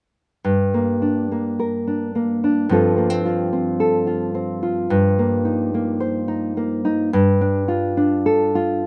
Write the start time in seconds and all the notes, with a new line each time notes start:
0.45 G2
0.74 A#3
1.02 D4
1.32 A#3
1.59 A#4
1.87 D4
2.15 A#3
2.44 D4
2.69 G2 F3 C4 F4 A4
2.97 A#3
3.10 C4
3.25 F4
3.53 C4
3.80 A4
4.07 F4
4.35 C4
4.63 F4
4.90 G2
5.19 A#3
5.45 D#4
5.74 A#3
6.00 C5
6.28 D#4
6.57 A#3
6.85 D#4
7.13 G2
7.41 D4
7.68 F4
7.97 D4
8.26 A4
8.55 F4